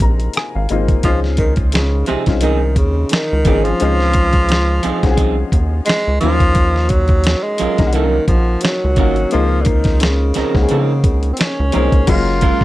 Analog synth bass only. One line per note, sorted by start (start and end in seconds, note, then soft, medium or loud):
0.01 0.29 A#1 medium
0.56 0.68 G#1 medium
0.71 0.99 G#1 medium
1.05 2.04 C#2 loud
2.11 2.17 C2 soft
2.28 2.79 C2 medium
2.77 3.05 D#2 medium
3.33 3.44 C#2 medium
3.46 3.74 G#1 medium
3.82 4.80 C#2 loud
4.86 4.93 C2 soft
5.04 5.44 C2 medium
5.53 5.81 D#2 medium
6.08 6.20 C#2 medium
6.24 7.35 D#2 loud
7.61 7.68 C2 soft
7.80 8.20 C2 medium
8.29 8.57 A#1 medium
8.84 8.96 C#2 medium
8.98 9.26 G#1 medium
9.34 10.32 C#2 loud
10.38 10.45 C#2 soft
10.56 10.68 C#2 medium
10.72 11.07 C#3 loud
11.05 11.33 C#2 medium
11.60 11.72 C#2 medium
11.76 11.90 C2 medium
11.93 12.06 C#2 medium
12.09 12.52 F#1 loud